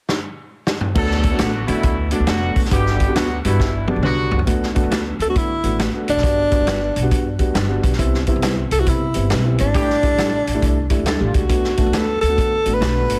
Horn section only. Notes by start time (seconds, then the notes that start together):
0.95 F#3 A3 D4 A4
1.39 D3 F#3 B3 F#4
1.66 B2 E3 A3 E4
2.11 B2 D3 A3 D4
2.27 D3 F#3 B3 F#4
2.71 D3 G3 B3 G4
3.15 D3 F#3 B3 F#4
3.44 B2 E3 G3 E4
3.88 B2 D3 G3 D4
4.05 D3 F#3 B3 F#4
9.74 E3 G3 D4 G4